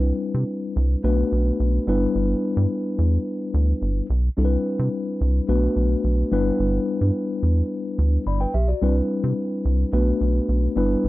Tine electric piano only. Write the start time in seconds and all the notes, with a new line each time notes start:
Already playing: G3 C4 D4 E4 B4
1.04 A3 B3 D4 F#4 B4
1.87 G3 B3 D4 E4 B4
4.37 G3 C4 D4 E4 A4
4.45 B4
5.48 A3 B3 D4 F#4 B4
6.31 G3 B3 D4 E4 B4
8.27 D5 B5
8.41 B4 G5
8.54 G4 E5
8.68 F#4 D5
8.82 G3 C4 D4 E4 B4
9.93 A3 B3 D4 F#4 B4
10.76 G3 B3 D4 E4 B4